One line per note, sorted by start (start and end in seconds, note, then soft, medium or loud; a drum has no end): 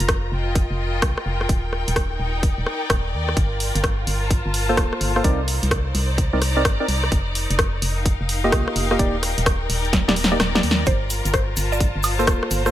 0.00 0.30 F1 loud
0.00 0.38 D#4 medium
0.00 2.26 F4 medium
0.00 6.01 A#4 medium
0.00 0.38 C5 medium
0.00 0.36 A#5 medium
0.00 closed hi-hat medium
0.08 kick loud
0.08 cross-stick loud
0.08 closed hi-hat medium
0.25 1.49 D#5 medium
0.32 0.67 F1 loud
0.32 4.13 G5 medium
0.55 kick loud
0.55 closed hi-hat medium
0.71 1.04 F1 loud
1.02 1.15 C2 medium
1.02 kick loud
1.02 cross-stick loud
1.02 closed hi-hat medium
1.18 cross-stick medium
1.26 1.47 F1 medium
1.41 cross-stick medium
1.49 1.84 D#1 medium
1.49 3.37 D#4 medium
1.49 kick loud
1.49 closed hi-hat medium
1.73 cross-stick soft
1.88 2.18 D#1 loud
1.88 closed hi-hat medium
1.96 kick loud
1.96 cross-stick loud
1.96 closed hi-hat medium
2.20 2.55 D#1 loud
2.36 4.13 D5 medium
2.43 kick loud
2.43 closed hi-hat medium
2.58 2.65 D#1 loud
2.66 cross-stick medium
2.90 3.15 D#1 medium
2.90 kick loud
2.90 cross-stick loud
2.90 closed hi-hat medium
3.13 3.34 D#2 medium
3.29 cross-stick medium
3.37 3.72 G1 medium
3.37 6.01 F4 medium
3.37 kick loud
3.37 closed hi-hat medium
3.60 open hi-hat medium
3.75 4.05 G1 loud
3.75 closed hi-hat medium
3.84 kick loud
3.84 cross-stick loud
3.84 closed hi-hat medium
4.01 7.88 C5 medium
4.07 4.42 G1 loud
4.07 open hi-hat medium
4.24 5.24 A5 medium
4.30 kick loud
4.30 closed hi-hat medium
4.46 4.79 G1 loud
4.54 open hi-hat loud
4.69 5.12 A#3 medium
4.69 5.12 F4 medium
4.69 5.12 A4 medium
4.69 5.12 C5 loud
4.77 4.90 D1 medium
4.77 kick loud
4.77 cross-stick loud
4.77 closed hi-hat medium
4.93 cross-stick medium
5.01 5.22 G1 medium
5.01 open hi-hat medium
5.16 5.23 A#3 medium
5.16 5.23 F4 medium
5.16 5.23 A4 medium
5.16 5.23 C5 medium
5.16 cross-stick medium
5.24 5.60 C2 medium
5.24 5.41 C4 loud
5.24 5.41 D#4 medium
5.24 10.87 D#4 medium
5.24 5.41 A#4 medium
5.24 5.41 D5 loud
5.24 kick loud
5.24 closed hi-hat medium
5.48 open hi-hat loud
5.63 5.93 C2 loud
5.63 7.88 D5 medium
5.63 closed hi-hat medium
5.71 kick loud
5.71 cross-stick loud
5.71 closed hi-hat medium
5.95 6.30 C2 loud
5.95 open hi-hat medium
6.12 7.71 A#5 medium
6.18 kick loud
6.18 closed hi-hat medium
6.33 6.66 C2 loud
6.33 6.39 C4 medium
6.33 6.39 D#4 medium
6.33 6.39 A#4 medium
6.33 6.39 D5 medium
6.42 cross-stick medium
6.42 open hi-hat loud
6.57 6.63 C4 medium
6.57 6.63 D#4 medium
6.57 6.63 A#4 medium
6.57 6.63 D5 loud
6.65 6.78 G1 medium
6.65 kick loud
6.65 cross-stick loud
6.65 closed hi-hat medium
6.80 6.86 C4 medium
6.80 6.86 D#4 medium
6.80 6.86 A#4 medium
6.80 6.86 D5 medium
6.88 7.09 C2 medium
6.88 open hi-hat medium
7.04 cross-stick medium
7.12 7.47 F1 medium
7.12 kick loud
7.12 closed hi-hat medium
7.24 12.71 A#4 medium
7.35 open hi-hat loud
7.50 7.80 F1 loud
7.50 closed hi-hat medium
7.59 kick loud
7.59 cross-stick loud
7.59 closed hi-hat medium
7.82 8.17 F1 loud
7.82 open hi-hat medium
7.99 9.69 F5 medium
7.99 11.63 G5 medium
8.05 kick loud
8.05 closed hi-hat medium
8.21 8.54 F1 medium
8.29 open hi-hat loud
8.44 8.87 A#3 medium
8.44 8.87 F4 medium
8.44 8.87 G4 medium
8.44 8.87 D#5 medium
8.52 8.65 C2 medium
8.52 kick loud
8.52 cross-stick loud
8.52 closed hi-hat medium
8.68 cross-stick medium
8.76 8.97 F1 medium
8.76 open hi-hat medium
8.91 8.98 A#3 medium
8.91 8.98 F4 medium
8.91 8.98 G4 medium
8.91 8.98 D#5 medium
8.91 cross-stick medium
8.99 9.35 D#1 medium
8.99 9.16 A#3 loud
8.99 9.16 D#4 medium
8.99 9.16 G4 medium
8.99 9.16 D5 loud
8.99 kick loud
8.99 closed hi-hat medium
9.23 cross-stick soft
9.23 open hi-hat loud
9.38 9.68 D#1 loud
9.38 closed hi-hat medium
9.46 kick loud
9.46 cross-stick loud
9.46 closed hi-hat medium
9.63 11.63 D5 medium
9.70 10.05 D#1 loud
9.70 open hi-hat medium
9.85 closed hi-hat soft
9.93 kick loud
9.93 snare medium
9.93 closed hi-hat medium
10.08 10.38 D#1 loud
10.08 10.14 A#3 medium
10.08 10.14 D#4 medium
10.08 10.14 G4 medium
10.08 10.14 D5 medium
10.08 snare medium
10.16 open hi-hat loud
10.24 snare medium
10.31 10.38 A#3 medium
10.31 10.38 D#4 medium
10.31 10.38 G4 medium
10.31 10.38 D5 loud
10.40 10.61 D#1 medium
10.40 cross-stick loud
10.40 snare medium
10.40 closed hi-hat medium
10.55 10.61 A#3 medium
10.55 10.61 D#4 medium
10.55 10.61 G4 medium
10.55 10.61 D5 medium
10.55 snare medium
10.63 10.84 D#2 medium
10.63 open hi-hat medium
10.71 snare medium
10.86 11.22 G1 medium
10.86 12.71 F4 medium
10.86 11.09 C5 loud
10.86 kick loud
10.86 closed hi-hat medium
10.86 shaker soft
11.10 open hi-hat loud
11.10 shaker medium
11.25 11.55 G1 loud
11.25 closed hi-hat medium
11.25 shaker soft
11.34 11.52 C5 medium
11.34 kick loud
11.34 cross-stick loud
11.34 closed hi-hat medium
11.34 shaker soft
11.49 12.71 C5 medium
11.49 12.71 A5 medium
11.57 11.92 G1 loud
11.57 open hi-hat medium
11.57 shaker medium
11.72 12.68 D5 medium
11.72 shaker soft
11.80 kick loud
11.80 closed hi-hat medium
11.80 shaker soft
11.96 12.29 G1 loud
12.03 open hi-hat loud
12.03 high woodblock medium
12.03 shaker medium
12.19 12.62 A#3 medium
12.19 12.62 F4 medium
12.19 12.62 A4 medium
12.19 12.62 C5 loud
12.19 shaker soft
12.27 12.40 D1 medium
12.27 kick loud
12.27 cross-stick loud
12.27 closed hi-hat medium
12.27 shaker soft
12.43 cross-stick medium
12.51 12.71 G1 medium
12.51 open hi-hat medium
12.51 shaker medium
12.66 12.71 A#3 medium
12.66 12.71 F4 medium
12.66 12.71 A4 medium
12.66 12.71 C5 medium
12.66 cross-stick medium
12.66 shaker soft